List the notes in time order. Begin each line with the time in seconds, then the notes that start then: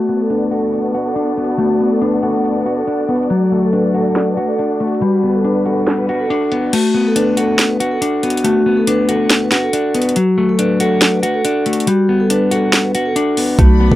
Already playing: A3 B3 F#4 A4 D5
0.09 B3
0.21 A4
0.30 D4 B4, closed hi-hat
0.51 F#4 A4, closed hi-hat
0.73 closed hi-hat
0.84 B4
0.94 F#4, closed hi-hat
1.06 A4
1.16 D4, closed hi-hat
1.37 B3 F#4, closed hi-hat
1.44 closed hi-hat
1.52 closed hi-hat
1.58 A3 F#4, closed hi-hat
1.80 B3
1.91 A4
2.01 D4 B4, closed hi-hat
2.22 F#4 A4, closed hi-hat
2.45 closed hi-hat
2.56 B4
2.66 F#4, closed hi-hat
2.77 A4
2.87 D4, closed hi-hat
3.09 B3 B4, closed hi-hat
3.16 closed hi-hat
3.23 closed hi-hat
3.30 F#3 A3 D4 F#4, closed hi-hat
3.52 A3
3.63 A4
3.72 D4 B4, closed hi-hat
3.94 F#4 A4, closed hi-hat
4.16 snare, closed hi-hat
4.37 F#4, closed hi-hat
4.48 A4
4.59 D4, closed hi-hat
4.80 A3 F#4, closed hi-hat
4.87 closed hi-hat
4.94 closed hi-hat
5.02 G3 F#4 B4, closed hi-hat
5.23 B3
5.34 A4
5.44 D4 B4, closed hi-hat
5.65 F#4 A4, closed hi-hat
5.87 snare, closed hi-hat
5.98 B4
6.09 F#4, closed hi-hat
6.20 A4
6.30 D4, closed hi-hat
6.52 B3 B4, closed hi-hat
6.73 A3 F#4, closed hi-hat, crash
6.95 B3
7.06 A4
7.16 D4 B4, closed hi-hat
7.37 F#4 A4, closed hi-hat
7.59 snare, closed hi-hat
7.69 B4
7.80 F#4, closed hi-hat
7.91 A4
8.02 D4, closed hi-hat
8.23 B3 F#4, closed hi-hat
8.30 closed hi-hat
8.37 closed hi-hat
8.44 A3 F#4, closed hi-hat
8.66 B3
8.77 A4
8.87 D4 B4, closed hi-hat
9.09 F#4 A4, closed hi-hat
9.30 snare, closed hi-hat
9.42 B4
9.52 F#4, snare, closed hi-hat
9.63 A4
9.73 D4, closed hi-hat
9.94 B3 B4, closed hi-hat
10.02 closed hi-hat
10.09 closed hi-hat
10.16 F#3 F#4, closed hi-hat
10.38 A3
10.49 A4
10.58 D4 B4, closed hi-hat
10.80 F#4 A4, closed hi-hat
11.02 snare, closed hi-hat
11.13 B4
11.23 F#4, closed hi-hat
11.34 A4
11.45 D4, closed hi-hat
11.66 A3 F#4, closed hi-hat
11.73 closed hi-hat
11.80 closed hi-hat
11.87 G3 F#4, closed hi-hat
12.09 B3
12.20 A4
12.30 D4 B4, closed hi-hat
12.51 F#4 A4, closed hi-hat
12.73 snare, closed hi-hat
12.84 B4
12.95 F#4, closed hi-hat
13.05 A4
13.16 D4, closed hi-hat
13.37 B3 B4, open hi-hat
13.59 B1 A3 F#4 A4 D5 F#5 B5, kick, closed hi-hat
13.80 B3
13.92 B1 A4, kick